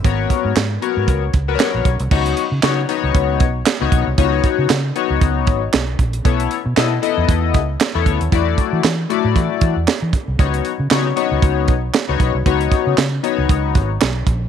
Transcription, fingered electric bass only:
X:1
M:4/4
L:1/16
Q:"Swing 16ths" 1/4=116
K:C#m
V:1 name="Fingered electric bass" clef=bass
G,,,2 z G,, G,,2 z G,, C,,2 C,,2 z ^A,,, B,,, ^B,,, | C,,2 z C, C,2 z C,, C,,2 B,,,2 z C,, B,,, ^B,,, | C,,2 z C, C,2 z C,, C,,2 G,,,2 B,,,2 ^A,,,2 | B,,,2 z B,, B,,2 z E,, E,,2 C,,2 z E,, =D,, ^D,, |
E,,2 z E, E,2 z A,, E, z E, E,, z E, z ^B,,, | C,,2 z C, C,2 z C,, C,,2 B,,,2 z C,, B,,, ^B,,, | C,,2 z C, C,2 z C,, C,,2 G,,,2 B,,,2 ^A,,,2 |]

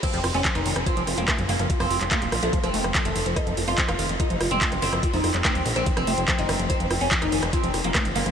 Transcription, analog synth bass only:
X:1
M:4/4
L:1/16
Q:1/4=144
K:none
V:1 name="Analog synth bass" clef=bass
z F,,, F,,, F,,, z F,,, F,,, F,,, z F,,, F,,, F,,, z _G,,, G,,, G,,, | z F,,, F,,, F,,, z _E,,, _B,,, B,,, z F,,, F,,, F,,, z F,,, F,,, F,,, | z F,,, F,,, F,,, z F,,, F,,, F,,, z F,,, F,,, F,,, z _G,,, G,,, G,,, | z F,,, F,,, F,,, z _E,,, _B,,, B,,, z F,,, F,,, F,,, z _G,,, G,,, G,,, |
z F,,, F,,, F,,, z F,,, F,,, F,,, z F,,, F,,, F,,, z _G,,, G,,, G,,, |]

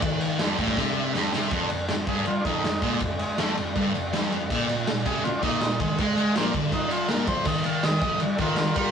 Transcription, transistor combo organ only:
X:1
M:4/4
L:1/8
Q:1/4=161
K:F
V:1 name="Transistor combo organ"
z8 | [K:Bb] z3 _A F [DE]2 _A, | z _A, =A, z4 z | z3 _A F [DE]2 _A, |
z _A, [F,B,] z E F B c | e f e2 z [FAB] [FB] [FB] |]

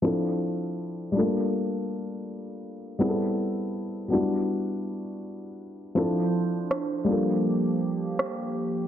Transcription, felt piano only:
X:1
M:4/4
L:1/8
Q:"Swing 16ths" 1/4=81
K:Gmix
V:1 name="Felt piano"
[F,CDEA]3 [G,A,_B,DFA]4- [G,A,B,DFA] | [G,B,CE^GA]3 [^F,=G,B,DE^F]4- [F,G,B,DEF] | [F,CDEA]3 [G,_B,DFA]4- [G,B,DFA] |]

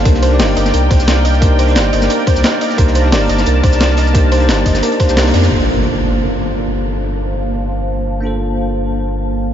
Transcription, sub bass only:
X:1
M:4/4
L:1/16
Q:"Swing 16ths" 1/4=176
K:Gm
V:1 name="Sub bass" clef=bass
C,,4 G,,,2 G,,,2 C,,2 C,,6- | C,,4 G,,,2 G,,,2 z3 C,, z4 | C,,4 G,,,2 G,,,2 C,,2 C,,6- | C,,4 G,,,2 G,,,2 z3 C,,3 F,,2 |
G,,,16- | G,,,16- | G,,,16 |]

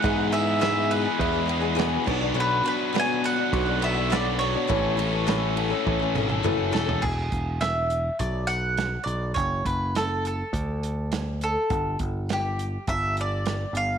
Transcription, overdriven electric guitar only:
X:1
M:4/4
L:1/16
Q:1/4=103
K:Emix
V:1 name="Overdriven electric guitar"
[E,,B,,E,G,B,G]2 [E,G,B,G] [E,G,B,G] [E,,B,,E,G,B,G] [E,G,B,G] [E,G,B,G] [E,G,B,G]3 [E,G,B,G] [E,G,B,G] [E,,B,,E,G,B,G]2 [B,,F,B,DF] [B,DF] | [B,,F,B,DF]2 [F,B,DF] [B,DF] [B,,F,B,DF] [B,DF] [F,B,DF] [B,DF]3 [F,B,DF] [B,DF] [B,,F,B,DF]2 [F,B,DF] [B,DF] | [A,,E,A,CA]2 [E,A,CA] [A,CA] [A,,E,A,CA] [A,CA] [E,A,CA] [A,CA]3 [E,A,CA] [A,CA] [A,,E,A,CA]2 [E,A,CA] [A,CA] | z16 |
z16 | z16 |]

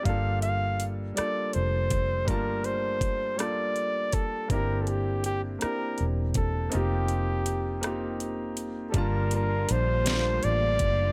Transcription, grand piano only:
X:1
M:6/8
L:1/8
Q:3/8=54
K:Gm
V:1 name="Grand piano"
[G,B,DFA]3 [G,B,DFA]3 | [G,A,B,DFa]3 [G,B,DFA]3 | [B,CD=EG]3 [B,CDEG]3 | [B,CEFG]3 [B,CEFG]3 |
[G,B,DFa]3 [G,A,B,DFc]3 |]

